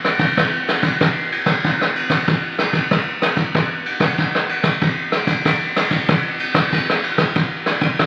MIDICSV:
0, 0, Header, 1, 2, 480
1, 0, Start_track
1, 0, Tempo, 635593
1, 279, Time_signature, 4, 2, 24, 8
1, 6088, End_track
2, 0, Start_track
2, 0, Title_t, "Drums"
2, 34, Note_on_c, 9, 37, 68
2, 34, Note_on_c, 9, 51, 52
2, 109, Note_off_c, 9, 37, 0
2, 109, Note_off_c, 9, 51, 0
2, 145, Note_on_c, 9, 36, 69
2, 146, Note_on_c, 9, 51, 50
2, 220, Note_off_c, 9, 36, 0
2, 221, Note_off_c, 9, 51, 0
2, 282, Note_on_c, 9, 36, 72
2, 284, Note_on_c, 9, 37, 71
2, 284, Note_on_c, 9, 51, 53
2, 357, Note_off_c, 9, 36, 0
2, 360, Note_off_c, 9, 37, 0
2, 360, Note_off_c, 9, 51, 0
2, 518, Note_on_c, 9, 37, 65
2, 518, Note_on_c, 9, 51, 51
2, 593, Note_off_c, 9, 37, 0
2, 593, Note_off_c, 9, 51, 0
2, 625, Note_on_c, 9, 36, 66
2, 626, Note_on_c, 9, 51, 52
2, 700, Note_off_c, 9, 36, 0
2, 701, Note_off_c, 9, 51, 0
2, 761, Note_on_c, 9, 36, 82
2, 762, Note_on_c, 9, 37, 70
2, 762, Note_on_c, 9, 51, 49
2, 837, Note_off_c, 9, 36, 0
2, 838, Note_off_c, 9, 37, 0
2, 838, Note_off_c, 9, 51, 0
2, 996, Note_on_c, 9, 51, 52
2, 1072, Note_off_c, 9, 51, 0
2, 1104, Note_on_c, 9, 36, 68
2, 1104, Note_on_c, 9, 37, 72
2, 1104, Note_on_c, 9, 51, 52
2, 1179, Note_off_c, 9, 36, 0
2, 1179, Note_off_c, 9, 37, 0
2, 1179, Note_off_c, 9, 51, 0
2, 1241, Note_on_c, 9, 36, 68
2, 1244, Note_on_c, 9, 51, 51
2, 1317, Note_off_c, 9, 36, 0
2, 1320, Note_off_c, 9, 51, 0
2, 1369, Note_on_c, 9, 37, 66
2, 1444, Note_off_c, 9, 37, 0
2, 1477, Note_on_c, 9, 51, 47
2, 1552, Note_off_c, 9, 51, 0
2, 1584, Note_on_c, 9, 36, 66
2, 1586, Note_on_c, 9, 37, 65
2, 1586, Note_on_c, 9, 51, 49
2, 1659, Note_off_c, 9, 36, 0
2, 1661, Note_off_c, 9, 37, 0
2, 1661, Note_off_c, 9, 51, 0
2, 1721, Note_on_c, 9, 36, 87
2, 1721, Note_on_c, 9, 51, 49
2, 1796, Note_off_c, 9, 36, 0
2, 1796, Note_off_c, 9, 51, 0
2, 1953, Note_on_c, 9, 37, 68
2, 1953, Note_on_c, 9, 51, 49
2, 2028, Note_off_c, 9, 37, 0
2, 2028, Note_off_c, 9, 51, 0
2, 2063, Note_on_c, 9, 36, 74
2, 2065, Note_on_c, 9, 51, 48
2, 2138, Note_off_c, 9, 36, 0
2, 2140, Note_off_c, 9, 51, 0
2, 2199, Note_on_c, 9, 36, 68
2, 2199, Note_on_c, 9, 37, 75
2, 2199, Note_on_c, 9, 51, 49
2, 2274, Note_off_c, 9, 36, 0
2, 2274, Note_off_c, 9, 37, 0
2, 2274, Note_off_c, 9, 51, 0
2, 2431, Note_on_c, 9, 37, 70
2, 2431, Note_on_c, 9, 51, 48
2, 2506, Note_off_c, 9, 37, 0
2, 2506, Note_off_c, 9, 51, 0
2, 2542, Note_on_c, 9, 36, 67
2, 2543, Note_on_c, 9, 51, 45
2, 2618, Note_off_c, 9, 36, 0
2, 2619, Note_off_c, 9, 51, 0
2, 2679, Note_on_c, 9, 36, 80
2, 2682, Note_on_c, 9, 37, 68
2, 2682, Note_on_c, 9, 51, 46
2, 2755, Note_off_c, 9, 36, 0
2, 2757, Note_off_c, 9, 37, 0
2, 2757, Note_off_c, 9, 51, 0
2, 2913, Note_on_c, 9, 51, 47
2, 2988, Note_off_c, 9, 51, 0
2, 3022, Note_on_c, 9, 36, 69
2, 3025, Note_on_c, 9, 37, 71
2, 3025, Note_on_c, 9, 51, 53
2, 3097, Note_off_c, 9, 36, 0
2, 3100, Note_off_c, 9, 37, 0
2, 3100, Note_off_c, 9, 51, 0
2, 3159, Note_on_c, 9, 36, 68
2, 3161, Note_on_c, 9, 51, 49
2, 3235, Note_off_c, 9, 36, 0
2, 3237, Note_off_c, 9, 51, 0
2, 3284, Note_on_c, 9, 37, 65
2, 3360, Note_off_c, 9, 37, 0
2, 3391, Note_on_c, 9, 51, 47
2, 3467, Note_off_c, 9, 51, 0
2, 3501, Note_on_c, 9, 36, 68
2, 3501, Note_on_c, 9, 37, 69
2, 3501, Note_on_c, 9, 51, 48
2, 3576, Note_off_c, 9, 36, 0
2, 3577, Note_off_c, 9, 37, 0
2, 3577, Note_off_c, 9, 51, 0
2, 3635, Note_on_c, 9, 51, 52
2, 3638, Note_on_c, 9, 36, 87
2, 3711, Note_off_c, 9, 51, 0
2, 3713, Note_off_c, 9, 36, 0
2, 3867, Note_on_c, 9, 37, 68
2, 3867, Note_on_c, 9, 51, 51
2, 3942, Note_off_c, 9, 37, 0
2, 3942, Note_off_c, 9, 51, 0
2, 3980, Note_on_c, 9, 36, 68
2, 3980, Note_on_c, 9, 51, 52
2, 4056, Note_off_c, 9, 36, 0
2, 4056, Note_off_c, 9, 51, 0
2, 4118, Note_on_c, 9, 36, 73
2, 4120, Note_on_c, 9, 37, 70
2, 4120, Note_on_c, 9, 51, 54
2, 4194, Note_off_c, 9, 36, 0
2, 4196, Note_off_c, 9, 37, 0
2, 4196, Note_off_c, 9, 51, 0
2, 4352, Note_on_c, 9, 37, 72
2, 4352, Note_on_c, 9, 51, 53
2, 4427, Note_off_c, 9, 37, 0
2, 4427, Note_off_c, 9, 51, 0
2, 4461, Note_on_c, 9, 36, 68
2, 4463, Note_on_c, 9, 51, 50
2, 4537, Note_off_c, 9, 36, 0
2, 4539, Note_off_c, 9, 51, 0
2, 4597, Note_on_c, 9, 36, 88
2, 4597, Note_on_c, 9, 37, 68
2, 4597, Note_on_c, 9, 51, 53
2, 4673, Note_off_c, 9, 36, 0
2, 4673, Note_off_c, 9, 37, 0
2, 4673, Note_off_c, 9, 51, 0
2, 4828, Note_on_c, 9, 51, 54
2, 4904, Note_off_c, 9, 51, 0
2, 4942, Note_on_c, 9, 36, 70
2, 4943, Note_on_c, 9, 37, 72
2, 4943, Note_on_c, 9, 51, 54
2, 5017, Note_off_c, 9, 36, 0
2, 5019, Note_off_c, 9, 37, 0
2, 5019, Note_off_c, 9, 51, 0
2, 5079, Note_on_c, 9, 36, 66
2, 5079, Note_on_c, 9, 51, 52
2, 5154, Note_off_c, 9, 51, 0
2, 5155, Note_off_c, 9, 36, 0
2, 5207, Note_on_c, 9, 37, 70
2, 5282, Note_off_c, 9, 37, 0
2, 5310, Note_on_c, 9, 51, 49
2, 5386, Note_off_c, 9, 51, 0
2, 5422, Note_on_c, 9, 36, 72
2, 5422, Note_on_c, 9, 37, 71
2, 5422, Note_on_c, 9, 51, 50
2, 5497, Note_off_c, 9, 36, 0
2, 5498, Note_off_c, 9, 37, 0
2, 5498, Note_off_c, 9, 51, 0
2, 5556, Note_on_c, 9, 51, 49
2, 5557, Note_on_c, 9, 36, 86
2, 5631, Note_off_c, 9, 51, 0
2, 5633, Note_off_c, 9, 36, 0
2, 5786, Note_on_c, 9, 37, 71
2, 5786, Note_on_c, 9, 51, 47
2, 5861, Note_off_c, 9, 37, 0
2, 5861, Note_off_c, 9, 51, 0
2, 5897, Note_on_c, 9, 51, 49
2, 5900, Note_on_c, 9, 36, 69
2, 5973, Note_off_c, 9, 51, 0
2, 5976, Note_off_c, 9, 36, 0
2, 6035, Note_on_c, 9, 37, 71
2, 6035, Note_on_c, 9, 51, 51
2, 6037, Note_on_c, 9, 36, 69
2, 6088, Note_off_c, 9, 36, 0
2, 6088, Note_off_c, 9, 37, 0
2, 6088, Note_off_c, 9, 51, 0
2, 6088, End_track
0, 0, End_of_file